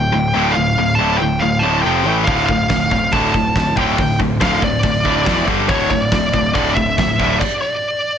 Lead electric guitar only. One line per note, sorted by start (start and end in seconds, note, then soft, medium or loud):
0.00 0.56 G5 loud
0.51 0.98 F5 medium
0.95 1.17 A5 loud
1.18 1.41 G5 medium
1.40 1.63 F5 medium
1.59 1.82 A5 loud
1.82 2.13 G5 medium
2.24 2.45 F5 medium
2.46 3.14 F5 medium
3.12 3.77 A5 medium
3.77 4.17 G5 medium
4.42 4.64 F5 loud
4.64 5.45 D5 medium
5.69 5.90 C#5 medium
5.90 6.01 C#5 medium
6.01 6.53 D5 medium
6.54 6.74 D5 medium
6.75 7.39 E5 loud
7.39 7.61 D5 medium
7.62 8.18 D5 medium